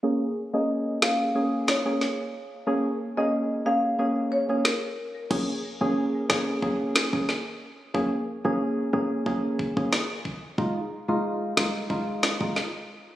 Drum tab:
CC |----------------|----------------|x---------------|----------------|
SD |------o---o-o---|------------o---|------o---o-o---|------------o---|
BD |----------------|----------------|o-------o--o----|o-------o-oo--o-|

CC |----------------|
SD |------o---o-o---|
BD |o-------o--o----|